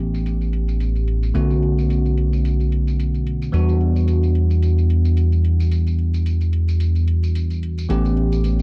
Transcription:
Already playing: A1 E3 A3 B3 C#4 G4
0.14 closed hi-hat, tambourine
0.26 closed hi-hat, tambourine
0.41 closed hi-hat, tambourine
0.53 closed hi-hat
0.68 closed hi-hat, tambourine
0.80 closed hi-hat, tambourine
0.96 closed hi-hat, tambourine
1.08 closed hi-hat
1.23 closed hi-hat, tambourine
1.34 B1 D3 A3 B3 C#4 F#4, closed hi-hat, tambourine
1.50 closed hi-hat, tambourine
1.63 closed hi-hat
1.78 closed hi-hat, tambourine
1.90 closed hi-hat, tambourine
2.05 closed hi-hat, tambourine
2.17 closed hi-hat
2.33 closed hi-hat, tambourine
2.45 closed hi-hat, tambourine
2.60 closed hi-hat, tambourine
2.72 closed hi-hat
2.87 closed hi-hat, tambourine
3.00 closed hi-hat, tambourine
3.14 closed hi-hat, tambourine
3.27 closed hi-hat
3.42 closed hi-hat, tambourine
3.52 E2 E3 G3 B3 D4 F#4, closed hi-hat, tambourine
3.68 closed hi-hat, tambourine
3.81 closed hi-hat
3.96 closed hi-hat, tambourine
4.08 closed hi-hat, tambourine
4.23 closed hi-hat, tambourine
4.35 closed hi-hat
4.50 closed hi-hat, tambourine
4.62 closed hi-hat, tambourine
4.78 closed hi-hat, tambourine
4.90 closed hi-hat
5.05 closed hi-hat, tambourine
5.17 closed hi-hat, tambourine
5.32 closed hi-hat, tambourine
5.45 closed hi-hat
5.60 closed hi-hat, tambourine
5.71 closed hi-hat, tambourine
5.87 closed hi-hat, tambourine
5.99 closed hi-hat
6.14 closed hi-hat, tambourine
6.26 closed hi-hat, tambourine
6.41 closed hi-hat, tambourine
6.53 closed hi-hat
6.68 closed hi-hat, tambourine
6.80 closed hi-hat, tambourine
6.95 closed hi-hat, tambourine
7.08 closed hi-hat
7.23 closed hi-hat, tambourine
7.35 closed hi-hat, tambourine
7.50 closed hi-hat, tambourine
7.63 closed hi-hat
7.78 closed hi-hat, tambourine
7.89 A1 E3 A3 B3 C#4 G4, closed hi-hat, tambourine
8.05 closed hi-hat, tambourine
8.17 closed hi-hat
8.32 closed hi-hat, tambourine
8.44 closed hi-hat, tambourine
8.59 closed hi-hat

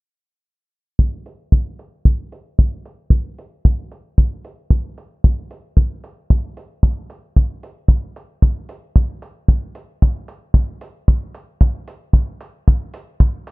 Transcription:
0.99 kick
1.26 open hi-hat
1.52 kick
1.79 open hi-hat
2.05 kick
2.32 open hi-hat
2.59 kick
2.85 open hi-hat
3.10 kick
3.38 open hi-hat
3.65 kick
3.92 open hi-hat
4.18 kick
4.45 open hi-hat
4.70 kick
4.98 open hi-hat
5.24 kick
5.51 open hi-hat
5.77 kick
6.04 open hi-hat
6.30 kick
6.57 open hi-hat
6.83 kick
7.10 open hi-hat
7.36 kick
7.63 open hi-hat
7.88 kick
8.16 open hi-hat
8.42 kick
8.69 open hi-hat
8.96 kick
9.22 open hi-hat
9.48 kick
9.75 open hi-hat
10.02 kick
10.28 open hi-hat
10.54 kick
10.81 open hi-hat
11.08 kick
11.34 open hi-hat
11.61 kick
11.88 open hi-hat
12.13 kick
12.41 open hi-hat
12.68 kick
12.94 open hi-hat
13.20 kick
13.47 open hi-hat

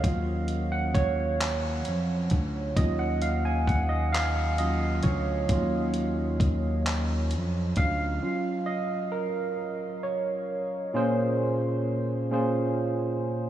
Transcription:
Already playing: F5
0.04 D#2 F#3 C#4 F4, kick, closed hi-hat
0.48 closed hi-hat
0.72 F#5
0.94 C#5, kick, closed hi-hat
1.41 clap, closed hi-hat
1.85 F2, closed hi-hat
2.30 D2, kick, closed hi-hat
2.76 D#2 F#3 C#4 F4 D#5, kick, closed hi-hat
2.99 F#5
3.22 F5, closed hi-hat
3.45 G#5
3.67 F#5, kick, closed hi-hat
3.89 D#5
4.12 F5, clap, closed hi-hat
4.58 F#3 C#4 F4 D#5, closed hi-hat
5.03 D2 C#5, kick, closed hi-hat
5.49 D#2 F#3 C#4 F4, kick, closed hi-hat
5.94 closed hi-hat
6.40 kick, closed hi-hat
6.86 clap, closed hi-hat
7.31 F2, closed hi-hat
7.76 D2 F5, kick, closed hi-hat
8.22 F#3 C#4 F4
8.66 D#5
9.12 A#4
10.03 C#5
10.93 A#2 C#4 F4 G#4 C5
12.31 A#2 C#4 F4 G#4 C5

